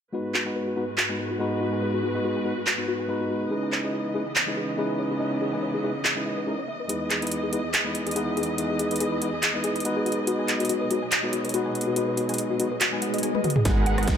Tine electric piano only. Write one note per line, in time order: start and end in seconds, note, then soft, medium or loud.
0.13 0.43 G#3 medium
0.13 0.43 B3 medium
0.13 0.43 D#4 medium
0.13 0.44 F#4 medium
0.13 0.44 B4 medium
0.45 0.74 G#3 medium
0.45 0.74 B3 medium
0.45 0.74 D#4 medium
0.45 0.75 F#4 medium
0.45 0.75 B4 medium
0.76 0.83 G#3 medium
0.76 0.83 B3 medium
0.76 0.84 D#4 medium
0.76 0.84 F#4 medium
0.76 0.84 B4 medium
1.09 1.37 G#3 medium
1.09 1.38 B3 medium
1.09 1.38 D#4 medium
1.09 1.38 F#4 medium
1.09 1.38 B4 medium
1.39 1.80 G#3 medium
1.39 1.80 B3 medium
1.39 1.80 D#4 medium
1.39 1.80 F#4 medium
1.39 1.81 B4 loud
1.82 2.12 G#3 medium
1.82 2.12 B3 medium
1.82 2.12 D#4 medium
1.82 2.13 F#4 medium
1.82 2.13 B4 medium
2.14 2.43 G#3 medium
2.14 2.43 B3 medium
2.14 2.43 D#4 medium
2.14 2.44 F#4 medium
2.14 2.44 B4 medium
2.45 2.52 G#3 medium
2.45 2.53 B3 medium
2.45 2.53 D#4 medium
2.45 2.53 F#4 medium
2.45 2.53 B4 medium
2.78 3.06 G#3 medium
2.78 3.07 B3 medium
2.78 3.07 D#4 medium
2.78 3.07 F#4 medium
2.78 3.07 B4 medium
3.08 3.49 G#3 medium
3.08 3.49 B3 medium
3.08 3.49 D#4 medium
3.08 3.49 F#4 medium
3.08 3.50 B4 loud
3.50 3.81 G#3 medium
3.50 3.81 C#4 medium
3.50 3.81 D#4 medium
3.50 3.81 E4 medium
3.50 3.82 B4 medium
3.83 4.12 G#3 medium
3.83 4.12 C#4 medium
3.83 4.12 D#4 medium
3.83 4.13 E4 medium
3.83 4.13 B4 medium
4.14 4.21 G#3 medium
4.14 4.22 C#4 medium
4.14 4.22 D#4 medium
4.14 4.22 E4 medium
4.14 4.22 B4 medium
4.47 4.75 G#3 medium
4.47 4.76 C#4 medium
4.47 4.76 D#4 medium
4.47 4.76 E4 medium
4.47 4.76 B4 medium
4.77 5.18 G#3 medium
4.77 5.18 C#4 medium
4.77 5.18 D#4 medium
4.77 5.18 E4 medium
4.77 5.19 B4 loud
5.19 5.50 G#3 medium
5.19 5.50 C#4 medium
5.19 5.50 D#4 medium
5.19 5.51 E4 medium
5.19 5.51 B4 medium
5.52 5.81 G#3 medium
5.52 5.81 C#4 medium
5.52 5.82 D#4 medium
5.52 5.82 E4 medium
5.52 5.82 B4 medium
5.83 5.90 G#3 medium
5.83 5.91 C#4 medium
5.83 5.91 D#4 medium
5.83 5.91 E4 medium
5.83 5.91 B4 medium
6.16 6.44 G#3 medium
6.16 6.45 C#4 medium
6.16 6.45 D#4 medium
6.16 6.45 E4 medium
6.16 6.45 B4 medium
6.46 6.54 G#3 medium
6.46 6.54 C#4 medium
6.46 6.54 D#4 medium
6.46 6.55 E4 medium
6.46 6.55 A#4 medium
6.88 7.19 G#3 medium
6.88 7.19 B3 medium
6.88 7.19 D#4 medium
6.88 7.20 E4 medium
6.88 7.20 B4 medium
7.21 7.50 G#3 medium
7.21 7.50 B3 medium
7.21 7.51 D#4 medium
7.21 7.51 E4 medium
7.21 7.51 B4 medium
7.52 7.59 G#3 medium
7.52 7.60 B3 medium
7.52 7.60 D#4 medium
7.52 7.60 E4 medium
7.52 7.60 B4 medium
7.84 8.13 G#3 medium
7.84 8.14 B3 medium
7.84 8.14 D#4 medium
7.84 8.14 E4 medium
7.84 8.14 B4 medium
8.15 8.56 G#3 medium
8.15 8.56 B3 medium
8.15 8.56 D#4 medium
8.15 8.56 E4 medium
8.15 8.57 B4 loud
8.57 8.88 G#3 medium
8.57 8.88 B3 medium
8.57 8.88 D#4 medium
8.57 8.89 E4 medium
8.57 8.89 B4 medium
8.90 9.19 G#3 medium
8.90 9.19 B3 medium
8.90 9.20 D#4 medium
8.90 9.20 E4 medium
8.90 9.20 B4 medium
9.21 9.28 G#3 medium
9.21 9.29 B3 medium
9.21 9.29 D#4 medium
9.21 9.29 E4 medium
9.21 9.29 B4 medium
9.54 9.82 G#3 medium
9.54 9.83 B3 medium
9.54 9.83 D#4 medium
9.54 9.83 E4 medium
9.54 9.83 B4 medium
9.84 10.25 G#3 medium
9.84 10.25 B3 medium
9.84 10.25 D#4 medium
9.84 10.25 F#4 medium
9.84 10.26 B4 loud
10.27 10.57 G#3 medium
10.27 10.57 B3 medium
10.27 10.58 D#4 medium
10.27 10.58 F#4 medium
10.27 10.58 B4 medium
10.59 10.88 G#3 medium
10.59 10.88 B3 medium
10.59 10.89 D#4 medium
10.59 10.89 F#4 medium
10.59 10.89 B4 medium
10.90 10.98 G#3 medium
10.90 10.98 B3 medium
10.90 10.98 D#4 medium
10.90 10.98 F#4 medium
10.90 10.98 B4 medium
11.23 11.51 G#3 medium
11.23 11.52 B3 medium
11.23 11.52 D#4 medium
11.23 11.52 F#4 medium
11.23 11.52 B4 medium
11.53 11.94 G#3 medium
11.53 11.94 B3 medium
11.53 11.94 D#4 medium
11.53 11.94 F#4 medium
11.53 11.95 B4 loud
11.95 12.26 G#3 medium
11.95 12.26 B3 medium
11.95 12.27 D#4 medium
11.95 12.27 F#4 medium
11.95 12.27 B4 medium
12.28 12.57 G#3 medium
12.28 12.57 B3 medium
12.28 12.58 D#4 medium
12.28 12.58 F#4 medium
12.28 12.58 B4 medium
12.59 12.66 G#3 medium
12.59 12.67 B3 medium
12.59 12.67 D#4 medium
12.59 12.67 F#4 medium
12.59 12.67 B4 medium
12.92 13.20 G#3 medium
12.92 13.21 B3 medium
12.92 13.21 D#4 medium
12.92 13.21 F#4 medium
12.92 13.21 B4 medium
13.22 13.30 G#3 medium
13.22 13.30 B3 medium
13.22 13.30 D#4 medium
13.22 13.31 F#4 medium
13.22 13.31 G#4 medium
13.64 13.95 G#3 medium
13.64 13.95 B3 medium
13.64 13.96 D#4 medium
13.64 13.96 F#4 medium
13.64 13.96 B4 medium
13.97 14.17 G#3 medium
13.97 14.17 B3 medium
13.97 14.17 D#4 medium
13.97 14.17 F#4 medium
13.97 14.17 B4 medium